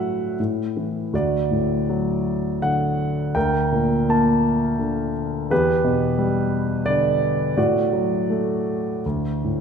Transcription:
Already playing: A2 F#3 F#4 A4 E5 F#5
0.40 A2
0.77 E3
1.13 D2 F#4 D5
1.51 A2
1.89 F#3
2.62 D3 F#5
3.35 D2 A#4 G5
3.72 A#2
4.09 A#3 A5
4.79 D3
5.51 E2 G4 B4
5.84 B2
6.18 G3
6.86 D3 D5
7.57 A2 F#4 D5
7.93 F#3
8.30 A3
9.06 D2
9.44 A2

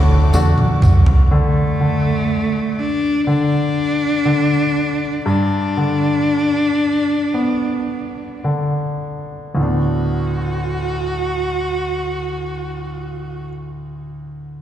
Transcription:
Already playing: D2 A2 D3 A3 D4 F#4 A4 D5 F#5 D6
0.33 E2 A3 D4 F#4, high tom, tambourine
0.58 mid tom
0.82 C2, mid tom, tambourine
1.06 floor tom
1.31 D3
1.36 A3
1.81 D3
2.79 D4
3.27 D3 D4
4.25 D3
5.26 G2 D4
5.77 D3
7.34 B3
8.44 D3
9.55 D2 A2 A3
9.59 B3 D4 F#4

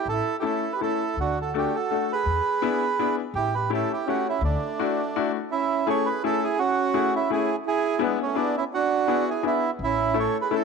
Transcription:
0.05 A1 A4
0.11 E4
0.40 A3 C#4 E4 G4 A4
0.45 E4 A4
0.73 G4 B4
0.81 A3 C#4 E4 A4
1.16 D2
1.20 D4 F#4
1.40 F#4 A4
1.54 A3 D4 F#4 G4 A4
1.75 F#4 A4
1.91 A3 D4 F#4 A4
2.12 G#4 B4
2.26 E2
2.62 B3 D4 E4 G#4
2.99 B3 D4 E4 G#4
3.34 A1 E4 G4
3.55 G4 B4
3.70 A3 C#4 E4 G4 A4
3.91 E4 G4
4.06 A3 C#4 E4 F#4 G4
4.27 C#4 E4
4.40 D2 A3
4.45 D4
4.79 A3 D4 E4 F#4
5.16 A3 D4 E4 F#4
5.51 C#4 E4
5.87 A3 C#4 E4 G#4 A4 C#5
6.06 G#4 B4
6.23 A3 C#4 E4 G#4 A4
6.43 E4 G#4
6.59 C#4 F#4
6.94 A3 C#4 E4 G#4
7.16 C#4 E4
7.30 A3 C#4 E4 G#4
7.66 E4 G#4
7.99 B3 D4 E4 G#4
8.04 G#3
8.22 A3 C#4
8.35 B3 D4 E4 G#4
8.58 C#4 E4
8.74 D4 F#4
9.07 B3 D4 E4 G#4
9.29 E4 G#4
9.43 B3 D4 E4 G#4
9.79 A1
9.84 C#4 E4
10.14 A3 C#4 E4 A4
10.20 A4 C#5
10.41 G#4 B4
10.51 A3 C#4 E4 A4
10.55 E4 A4

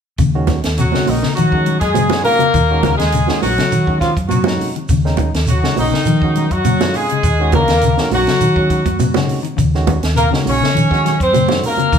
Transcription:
0.18 D#2 C#3, kick, closed hi-hat, shekere
0.35 D#3 G#3 C#4 F#4
0.47 D#3, kick, snare, closed hi-hat, high conga, shekere
0.64 D#2, snare, closed hi-hat
0.78 C3 F#3 F#4, closed hi-hat, shekere
0.92 C#3 D#3 G#3 C#4 F#4, snare, high conga
1.06 A#1 D#3 D#4, open hi-hat, high conga, shekere
1.23 C#3, muted fingered electric bass stroke, snare
1.35 D#3 F3 F#3 F#4, closed hi-hat, shekere
1.52 D#3 G#3 C#4 F#4, kick
1.66 F#3, closed hi-hat, shekere
1.80 F#2 G#3 G#4, kick, snare, closed hi-hat
1.94 C#3, closed hi-hat, high conga, shekere
2.10 D#3 G#3 C#4 F#4, snare, high conga
2.24 C3 A#3 A#4, open hi-hat, shekere
2.39 C#3, closed hi-hat, high conga
2.53 D#2 D#3, kick, closed hi-hat, shekere
2.71 D#3 G#3 C#4 F#4
2.83 C#3, kick, snare, closed hi-hat, high conga, shekere
2.98 D#2 G#3 G#4, snare, closed hi-hat
3.12 C#3, closed hi-hat, shekere
3.27 D#3 G#3 C#4 F#4, snare, high conga
3.41 A#1 F#3 F#4, snare, open hi-hat, high conga, shekere
3.58 C#3, muted fingered electric bass stroke, snare, closed hi-hat
3.72 D#3, closed hi-hat, shekere
3.87 D#3 G#3 C#4 F#4, kick
4.00 D#3 F3 F4, kick, snare, closed hi-hat, shekere
4.17 F#2, kick, closed hi-hat
4.28 C3 F#3 F#4, closed hi-hat, high conga, shekere
4.44 A#2 D#3 G#3 C#4 D#4, snare, high conga
4.60 C3, open hi-hat, shekere
4.76 D#3, closed hi-hat
4.89 D#2 C#3, kick, closed hi-hat, shekere
5.05 D#3 G#3 C#4 D#4, snare
5.17 D#3, kick, closed hi-hat, high conga, shekere
5.34 D#2, snare, closed hi-hat
5.47 C3 F#3 F#4, closed hi-hat, shekere
5.63 C#3 D#3 G#3 C#4 F#4, snare
5.76 A#1 D#3 D#4, open hi-hat, high conga, shekere
5.91 C#3, muted fingered electric bass stroke, snare
6.05 D#3 F3, closed hi-hat, shekere
6.22 D#3 G#3 C#4 F#4, kick
6.35 F#3, closed hi-hat, shekere
6.51 F#2 F#3 F#4, kick, closed hi-hat
6.65 C#3, closed hi-hat, high conga, shekere
6.81 D#3 G#3 C#4 F4, snare, high conga
6.94 C3 G#3 G#4, open hi-hat, shekere
7.09 C#3, closed hi-hat
7.23 D#2, muted clean electric guitar stroke, kick, closed hi-hat, shekere
7.39 D#3 G#3 C#4 F#4
7.52 C#3 A#3 A#4, kick, closed hi-hat, high conga, shekere
7.68 D#2, snare, closed hi-hat
7.81 C#3, closed hi-hat, shekere
7.98 D#3 G#3 C#4 F#4, snare
8.11 A#1 F#3 F#4, open hi-hat, high conga, shekere
8.26 C#3, muted fingered electric bass stroke, snare, closed hi-hat
8.41 D#3, closed hi-hat, shekere
8.56 D#3 G#3 C#4 F#4, kick
8.70 D#3, kick, closed hi-hat, shekere
8.85 F#2, kick, closed hi-hat, high conga
9.00 C3, closed hi-hat, high conga, shekere
9.14 C#3 D#3 G#3 C#4 F#4, snare, high conga
9.28 C3, open hi-hat, shekere
9.43 D#3, closed hi-hat
9.57 D#2 C#3, kick, closed hi-hat, shekere
9.74 D#3 G#3 C#4 F#4, snare
9.87 D#3, kick, closed hi-hat, high conga, shekere
10.03 D#2, snare, closed hi-hat
10.15 C3 A#3 A#4, closed hi-hat, shekere
10.31 C#3 D#3 G#3 C#4 F#4, snare
10.45 A#1 C#4 C#5, open hi-hat, high conga, shekere
10.61 C#3, muted fingered electric bass stroke, snare
10.75 D#3 F3, closed hi-hat, shekere
10.90 D#3 G#3 C#4 F#4, kick, snare
11.05 F#3, snare, closed hi-hat, shekere
11.20 F#2 C4 C5, kick, closed hi-hat
11.33 C#3, closed hi-hat, high conga, shekere
11.48 D#3 G#3 C#4 F#4, snare, high conga
11.63 C3 A#3 A#4, open hi-hat, shekere
11.77 C#3, closed hi-hat, high conga
11.93 D#2 D#3, kick, closed hi-hat, shekere

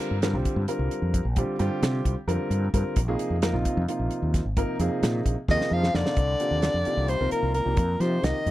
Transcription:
Already playing: D3 G3 C4 F4 A#4
0.00 snare, closed hi-hat
0.11 G2
0.22 D3 G3 C4 F4 A#4, snare, closed hi-hat
0.33 C2 D3 G3 C4 F4 G4
0.45 kick, closed hi-hat
0.56 G2
0.68 D3 G3 C4 F4 A#4, closed hi-hat
0.79 C2
0.91 closed hi-hat
1.02 F2
1.14 kick, closed hi-hat
1.25 A#1
1.36 D3 G3 C4 F4 G4, kick, closed hi-hat
1.59 G2 D3 G3 C4 F4 G4, closed hi-hat
1.82 C3, snare, closed hi-hat
2.05 C2, kick, closed hi-hat
2.27 F2 D3 G3 C4 F4 A#4, closed hi-hat
2.50 G2, closed hi-hat
2.74 G2 D3 G3 C4 F4 A#4, kick, closed hi-hat
2.96 A#1, kick, closed hi-hat
3.08 C3 F3 A#3 D#4 G#4
3.19 closed hi-hat
3.30 F2
3.42 C3 F3 A#3 D#4 A#4, snare, closed hi-hat
3.53 A#1 C3 F3 A#3 D#4 F4
3.65 kick, closed hi-hat
3.77 F2
3.88 C3 F3 A#3 D#4 F4, closed hi-hat
4.00 A#1
4.11 closed hi-hat
4.22 D#2
4.34 kick, snare, closed hi-hat
4.45 G#1
4.57 C3 F3 A#3 D#4 A#4, kick, closed hi-hat
4.79 F2 C3 F3 A#3 D#4 G#4, closed hi-hat
5.03 A#2, snare, closed hi-hat
5.26 A#1, kick, closed hi-hat
5.48 D#2 C3 D#3 F3 A#3 D#4 G#4 D#5, kick, snare
5.61 snare
5.71 F2 F3 F5
5.84 snare
5.94 F2 C3 D3 F3 A#3 D#4 F4 D5, snare
6.06 snare
6.16 C2, kick, closed hi-hat
6.40 C3 F3 A#3 D4 G4, closed hi-hat
6.51 D#2
6.62 snare, closed hi-hat
6.74 F2
6.85 C3 F3 A#3 D#4 G4, muted fretless electric bass stroke, closed hi-hat
6.97 C2
7.08 C3 C5, closed hi-hat
7.20 C2 C3 F3 A#3 D#4 A#4
7.31 A#2 A#4, muted fretless electric bass stroke, closed hi-hat
7.43 C2
7.54 A#2 A#4, closed hi-hat
7.66 C2 C3 F3 A#3 D#4 G4
7.77 F2, kick, closed hi-hat
8.00 C3 F3 A#3 D#4 G4 C5, snare, closed hi-hat
8.23 C2 D#3 D#5, snare, closed hi-hat
8.46 F2 C3 F3 A#3 D#4 G4, closed hi-hat

